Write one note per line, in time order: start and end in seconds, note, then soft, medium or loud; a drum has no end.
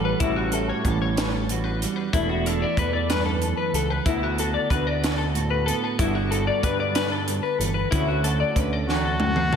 0.00 0.13 A1 medium
0.00 0.17 E2 medium
0.00 0.27 E3 medium
0.00 0.21 G3 medium
0.00 0.17 C#4 soft
0.00 0.18 F#4 medium
0.05 0.21 B4 medium
0.20 0.71 A1 medium
0.20 1.50 A2 medium
0.20 1.82 G3 medium
0.20 0.85 C#4 medium
0.20 0.36 E4 medium
0.20 kick loud
0.20 closed hi-hat medium
0.24 0.54 F#4 medium
0.36 0.52 F#4 medium
0.52 1.50 F#4 medium
0.52 0.69 A4 medium
0.52 closed hi-hat medium
0.69 0.86 C#5 medium
0.85 1.85 A1 medium
0.85 2.10 E3 soft
0.85 2.10 C#4 soft
0.85 1.01 A4 medium
0.85 kick medium
0.85 closed hi-hat medium
1.02 1.17 C#5 medium
1.17 1.33 B4 medium
1.17 snare medium
1.17 closed hi-hat medium
1.33 1.64 A4 medium
1.49 2.10 E2 medium
1.49 2.11 F#4 medium
1.49 closed hi-hat medium
1.64 1.80 B4 medium
1.80 2.14 G3 medium
1.80 1.96 A4 medium
1.80 closed hi-hat medium
1.96 2.13 B4 medium
2.13 2.63 E1 medium
2.13 3.10 E2 medium
2.13 4.07 A3 medium
2.13 2.81 B3 medium
2.13 2.45 D4 medium
2.13 2.29 E4 medium
2.13 kick medium
2.13 closed hi-hat medium
2.29 2.46 F#4 medium
2.46 2.64 D4 soft
2.46 2.62 A4 medium
2.46 closed hi-hat medium
2.62 4.07 E4 soft
2.62 2.78 D5 medium
2.77 3.52 E2 medium
2.77 4.04 E3 medium
2.77 2.93 B4 medium
2.77 kick medium
2.77 closed hi-hat medium
2.81 4.07 B3 medium
2.93 3.09 D5 medium
3.10 3.43 G2 medium
3.10 3.25 B4 medium
3.10 snare medium
3.10 closed hi-hat medium
3.26 3.57 A4 medium
3.42 3.74 F#2 medium
3.42 closed hi-hat medium
3.57 3.74 B4 medium
3.73 3.99 C#2 medium
3.73 4.07 E2 medium
3.73 3.90 A4 medium
3.73 closed hi-hat medium
3.90 4.06 B4 medium
4.05 4.56 D2 medium
4.05 6.00 D2 medium
4.05 5.68 B3 medium
4.05 4.23 E4 medium
4.05 4.39 F#4 medium
4.05 kick loud
4.05 closed hi-hat medium
4.23 4.39 F#4 medium
4.38 4.71 F#4 soft
4.38 4.54 A4 medium
4.38 closed hi-hat medium
4.54 4.70 D5 medium
4.70 5.70 D2 medium
4.70 6.62 D3 soft
4.70 5.35 F#4 medium
4.70 4.87 B4 medium
4.70 kick medium
4.70 closed hi-hat soft
4.87 5.02 D5 medium
5.02 5.17 B4 medium
5.02 snare medium
5.02 closed hi-hat medium
5.18 5.50 A4 medium
5.35 5.99 A2 medium
5.35 6.03 F#4 medium
5.35 closed hi-hat medium
5.50 5.66 B4 medium
5.66 5.96 B3 medium
5.66 5.84 A4 medium
5.66 closed hi-hat medium
5.84 6.00 B4 medium
5.99 6.49 G1 medium
5.99 6.94 G2 medium
5.99 7.89 B3 medium
5.99 6.64 D4 medium
5.99 6.15 E4 medium
5.99 kick medium
5.99 closed hi-hat medium
6.03 6.31 F#4 medium
6.15 6.31 F#4 medium
6.31 7.94 F#4 soft
6.31 6.47 A4 medium
6.31 closed hi-hat medium
6.47 6.63 D5 medium
6.63 7.38 G2 medium
6.63 8.54 D3 medium
6.63 7.88 D4 soft
6.63 6.79 B4 medium
6.63 kick medium
6.63 closed hi-hat medium
6.80 6.95 D5 medium
6.95 7.27 G2 medium
6.95 7.11 B4 medium
6.95 snare medium
6.95 closed hi-hat medium
7.12 7.42 A4 medium
7.28 closed hi-hat medium
7.43 7.59 B4 medium
7.59 7.84 G1 medium
7.59 7.92 E2 medium
7.59 7.74 A4 medium
7.59 closed hi-hat medium
7.74 7.90 B4 medium
7.91 8.88 D2 medium
7.91 8.42 D2 medium
7.91 9.56 A3 medium
7.91 8.54 C#4 medium
7.91 8.07 E4 medium
7.91 8.24 F#4 medium
7.91 kick medium
7.91 closed hi-hat medium
8.08 8.24 F#4 medium
8.24 9.56 F#4 medium
8.24 8.40 A4 medium
8.24 closed hi-hat medium
8.40 8.56 D5 medium
8.55 9.56 D2 medium
8.55 9.56 D3 medium
8.55 9.56 C#4 medium
8.55 8.73 B4 medium
8.55 kick medium
8.55 closed hi-hat medium
8.73 8.89 D5 medium
8.89 9.21 E2 medium
8.89 9.56 F#4 medium
8.89 9.04 B4 medium
8.89 snare soft
9.05 9.37 A4 medium
9.20 9.53 F#2 medium
9.20 high tom medium
9.36 9.52 B4 medium
9.36 mid tom medium
9.53 mid tom medium